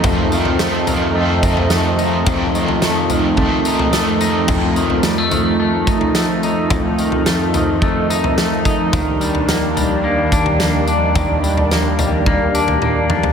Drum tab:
CC |----------------|----------------|x---------------|----------------|
TB |x-x-x-x---x-x-x-|x-x-x-x---x-x-x-|x-x-x-x---x-x-x-|x-x-x-x---x-x-x-|
SD |----o-------o---|----o-------o---|----o-------o---|----o-------o---|
T1 |----------------|----------------|----------------|----------------|
T2 |----------------|----------------|----------------|----------------|
FT |o--o--o----o----|o--o--o-o--o----|o--o--o----o----|o--o--o----o----|
BD |o---------o-----|o-------o-------|o---------o-----|o-------o-----o-|

CC |----------------|----------------|
TB |x-x-x-x---x-x-x-|x-x-x-x---x-----|
SD |----o-------o---|----o-----------|
T1 |----------------|------------o---|
T2 |----------------|--------------o-|
FT |o--o--o----o----|o--o--o-o--o---o|
BD |o---------o-----|o-------o-------|